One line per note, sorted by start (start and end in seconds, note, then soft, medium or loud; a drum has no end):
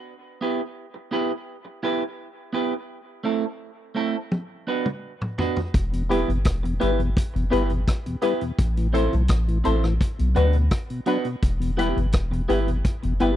0.41 0.60 B3 medium
0.41 0.60 E4 medium
0.41 0.60 G4 medium
0.41 0.61 B4 medium
0.94 muted clean electric guitar stroke soft
1.11 1.31 B3 medium
1.11 1.31 E4 medium
1.11 1.31 G4 loud
1.11 1.31 B4 medium
1.65 muted clean electric guitar stroke soft
1.83 2.02 B3 medium
1.83 2.02 E4 medium
1.83 2.02 G4 medium
1.83 2.03 B4 loud
2.53 2.72 B3 loud
2.53 2.73 E4 medium
2.53 2.73 G4 medium
2.53 2.73 B4 loud
3.24 3.43 A3 medium
3.24 3.44 C4 loud
3.24 3.44 E4 loud
3.24 3.44 A4 medium
3.95 4.15 A3 medium
3.95 4.15 C4 medium
3.95 4.15 E4 medium
3.95 4.16 A4 loud
4.32 high tom medium
4.67 4.86 B3 medium
4.67 4.87 D4 medium
4.67 4.87 F#4 medium
4.67 4.87 B4 medium
4.86 mid tom medium
5.21 mid tom medium
5.38 5.57 B3 medium
5.38 5.58 D4 medium
5.38 5.58 F#4 loud
5.38 5.58 B4 medium
5.38 floor tom loud
5.56 floor tom medium
5.74 6.24 E1 loud
5.74 kick loud
5.74 closed hi-hat medium
5.92 6.03 E2 medium
5.92 6.03 B2 medium
5.92 closed hi-hat medium
6.09 6.21 G3 medium
6.09 6.29 B3 medium
6.09 6.21 B3 medium
6.09 6.29 E4 medium
6.09 6.21 E4 medium
6.09 6.30 G4 medium
6.09 6.29 G4 medium
6.09 6.30 B4 loud
6.09 6.30 B4 medium
6.09 closed hi-hat medium
6.28 6.44 G1 loud
6.28 6.38 E2 medium
6.28 6.38 B2 medium
6.28 closed hi-hat soft
6.45 6.78 E1 loud
6.45 kick loud
6.45 cross-stick loud
6.45 closed hi-hat loud
6.63 6.74 E2 medium
6.63 6.74 B2 medium
6.63 muted clean electric guitar stroke medium
6.63 closed hi-hat soft
6.80 7.14 G1 loud
6.80 6.92 G3 medium
6.80 6.99 B3 medium
6.80 7.00 B3 medium
6.80 6.92 B3 medium
6.80 7.00 E4 medium
6.80 6.92 E4 medium
6.80 7.01 G4 medium
6.80 7.00 G4 medium
6.80 7.01 B4 medium
6.80 7.00 B4 loud
6.80 closed hi-hat medium
6.99 7.10 E2 medium
6.99 7.10 B2 medium
6.99 closed hi-hat soft
7.17 kick loud
7.17 closed hi-hat loud
7.34 7.51 F#1 loud
7.34 7.45 E2 medium
7.34 7.45 B2 medium
7.34 muted clean electric guitar stroke soft
7.34 closed hi-hat soft
7.50 7.85 G1 loud
7.50 7.63 G3 medium
7.50 7.70 B3 medium
7.50 7.71 B3 medium
7.50 7.63 B3 medium
7.50 7.71 E4 medium
7.50 7.63 E4 loud
7.50 7.72 G4 medium
7.50 7.71 G4 loud
7.50 7.72 B4 loud
7.50 7.71 B4 loud
7.50 closed hi-hat medium
7.70 7.81 E2 medium
7.70 7.81 B2 medium
7.70 closed hi-hat soft
7.88 kick loud
7.88 cross-stick loud
7.88 closed hi-hat medium
8.06 8.16 E2 medium
8.06 8.16 B2 medium
8.06 closed hi-hat soft
8.22 8.34 G3 medium
8.22 8.42 B3 loud
8.22 8.42 B3 medium
8.22 8.34 B3 medium
8.22 8.43 E4 medium
8.22 8.42 E4 medium
8.22 8.34 E4 medium
8.22 8.42 G4 loud
8.22 8.43 G4 medium
8.22 8.43 B4 loud
8.22 8.42 B4 loud
8.22 closed hi-hat medium
8.41 8.52 E2 medium
8.41 8.52 B2 medium
8.41 closed hi-hat soft
8.59 9.08 A1 loud
8.59 kick loud
8.59 closed hi-hat medium
8.77 8.88 A2 medium
8.77 8.88 E3 medium
8.77 closed hi-hat medium
8.93 9.05 A3 medium
8.93 9.13 C4 medium
8.93 9.14 C4 medium
8.93 9.05 C4 medium
8.93 9.14 E4 medium
8.93 9.05 E4 medium
8.93 9.13 E4 medium
8.93 9.14 A4 medium
8.93 9.13 A4 loud
8.93 9.14 C5 loud
8.93 closed hi-hat medium
9.13 9.29 B1 medium
9.13 9.23 A2 medium
9.13 9.23 E3 medium
9.13 closed hi-hat soft
9.28 9.62 A1 loud
9.28 kick loud
9.28 cross-stick loud
9.28 closed hi-hat loud
9.48 9.58 A2 medium
9.48 9.58 E3 medium
9.48 closed hi-hat soft
9.64 9.98 A1 loud
9.64 9.76 A3 medium
9.64 9.84 C4 medium
9.64 9.85 C4 medium
9.64 9.76 C4 medium
9.64 9.84 E4 medium
9.64 9.85 E4 medium
9.64 9.76 E4 medium
9.64 9.84 A4 medium
9.64 9.85 A4 medium
9.64 9.85 C5 loud
9.64 9.85 C5 medium
9.64 closed hi-hat medium
9.84 9.94 A2 medium
9.84 9.94 E3 medium
9.84 cross-stick medium
10.01 kick loud
10.01 closed hi-hat medium
10.18 10.35 B1 medium
10.18 10.29 B2 medium
10.18 closed hi-hat medium
10.35 10.69 D2 loud
10.35 10.47 F#3 medium
10.35 10.55 B3 medium
10.35 10.47 B3 medium
10.35 10.56 B3 medium
10.35 10.47 D4 medium
10.35 10.55 D4 loud
10.35 10.56 D4 medium
10.35 10.55 F#4 medium
10.35 10.56 F#4 medium
10.35 10.56 B4 medium
10.35 10.57 B4 loud
10.35 closed hi-hat medium
10.53 10.65 B2 medium
10.53 closed hi-hat soft
10.71 kick loud
10.71 cross-stick loud
10.71 closed hi-hat medium
10.90 11.01 B2 medium
10.90 closed hi-hat soft
11.06 11.18 F#3 medium
11.06 11.26 B3 medium
11.06 11.18 B3 medium
11.06 11.27 B3 medium
11.06 11.26 D4 medium
11.06 11.27 D4 medium
11.06 11.18 D4 medium
11.06 11.26 F#4 loud
11.06 11.27 F#4 medium
11.06 11.27 B4 loud
11.06 11.28 B4 loud
11.06 closed hi-hat medium
11.25 11.36 B2 medium
11.25 closed hi-hat soft
11.42 11.93 E1 loud
11.42 kick loud
11.42 closed hi-hat medium
11.60 11.71 E2 medium
11.60 11.71 B2 medium
11.60 closed hi-hat medium
11.77 11.89 G3 medium
11.77 11.97 B3 medium
11.77 11.89 B3 medium
11.77 11.98 B3 medium
11.77 11.89 E4 medium
11.77 11.98 E4 medium
11.77 11.98 G4 loud
11.77 11.99 G4 medium
11.77 11.98 B4 medium
11.77 11.99 B4 loud
11.77 closed hi-hat medium
11.95 12.13 G1 loud
11.95 12.07 E2 medium
11.95 12.06 B2 medium
11.95 closed hi-hat soft
12.12 12.47 E1 medium
12.12 kick loud
12.12 cross-stick loud
12.12 closed hi-hat loud
12.30 12.42 E2 medium
12.30 12.42 B2 medium
12.30 muted clean electric guitar stroke medium
12.30 closed hi-hat soft
12.48 12.82 G1 loud
12.48 12.60 G3 medium
12.48 12.68 B3 medium
12.48 12.69 B3 loud
12.48 12.60 B3 medium
12.48 12.68 E4 loud
12.48 12.60 E4 medium
12.48 12.69 E4 medium
12.48 12.69 G4 medium
12.48 12.70 B4 loud
12.48 12.69 B4 loud
12.48 closed hi-hat medium
12.67 12.78 E2 medium
12.67 12.78 B2 medium
12.67 closed hi-hat soft
12.85 kick loud
12.85 closed hi-hat medium
13.03 13.20 F#1 medium
13.03 13.14 E2 medium
13.03 13.14 B2 medium
13.03 muted clean electric guitar stroke soft
13.03 closed hi-hat soft
13.20 13.36 G1 medium
13.20 13.31 G3 medium
13.20 13.31 B3 medium
13.20 13.36 B3 medium
13.20 13.36 B3 loud
13.20 13.31 E4 medium
13.20 13.36 E4 medium
13.20 13.36 G4 medium
13.20 13.36 B4 loud
13.20 closed hi-hat medium